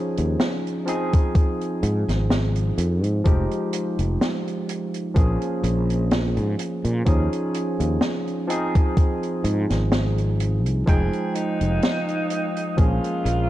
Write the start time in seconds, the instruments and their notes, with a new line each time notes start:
Already playing: tine electric piano F3 C#4 D#4 G#4
0.17 fretless electric bass D#2, closed hi-hat
0.40 snare, closed hi-hat
0.67 closed hi-hat
0.86 tine electric piano F3 C4 D#4 G#4, closed hi-hat
1.13 kick, closed hi-hat
1.35 kick, closed hi-hat
1.61 closed hi-hat
1.83 fretless electric bass G#2, closed hi-hat
2.08 fretless electric bass G#1, snare, closed hi-hat
2.30 snare, closed hi-hat
2.56 closed hi-hat
2.78 fretless electric bass F2, closed hi-hat
3.04 fretless electric bass G#2, closed hi-hat
3.24 fretless electric bass F1, tine electric piano F3 G#3 D#4 G4, kick, closed hi-hat
3.51 closed hi-hat
3.73 closed hi-hat
3.99 fretless electric bass F1, closed hi-hat
4.21 snare, closed hi-hat
4.48 closed hi-hat
4.69 closed hi-hat
4.94 closed hi-hat
5.15 fretless electric bass A#1, tine electric piano F3 A#3 C#4 G#4, kick, closed hi-hat
5.42 closed hi-hat
5.63 fretless electric bass A#1, closed hi-hat
5.90 closed hi-hat
6.11 snare, closed hi-hat
6.37 fretless electric bass G#2, closed hi-hat
6.59 closed hi-hat
6.85 fretless electric bass A#2, closed hi-hat
7.05 fretless electric bass D#2, tine electric piano F3 C#4 D#4 G#4, kick, closed hi-hat
7.33 closed hi-hat
7.54 closed hi-hat
7.80 fretless electric bass D#2, closed hi-hat
8.01 snare, closed hi-hat
8.27 closed hi-hat
8.48 tine electric piano F3 C4 D#4 G#4, closed hi-hat
8.75 kick, closed hi-hat
8.97 kick, closed hi-hat
9.23 closed hi-hat
9.44 fretless electric bass G#2, closed hi-hat
9.70 fretless electric bass G#1, snare, closed hi-hat
9.92 snare, closed hi-hat
10.18 closed hi-hat
10.40 closed hi-hat
10.66 fretless electric bass C2, closed hi-hat
10.86 fretless electric bass F1, tine electric piano F3 G#3 D#4 G5, ambient pad G#3 F5 G5 D#6, alto saxophone G#4, kick, closed hi-hat
11.13 closed hi-hat
11.35 alto saxophone D#4, closed hi-hat
11.61 fretless electric bass F1, closed hi-hat
11.82 snare, closed hi-hat
12.08 closed hi-hat
12.30 closed hi-hat
12.57 closed hi-hat
12.77 fretless electric bass A#1, tine electric piano F3 A#3 C#4 G#4, alto saxophone F4, ambient pad F5 A#5 C#6, kick, closed hi-hat
13.04 closed hi-hat
13.25 fretless electric bass A#1, closed hi-hat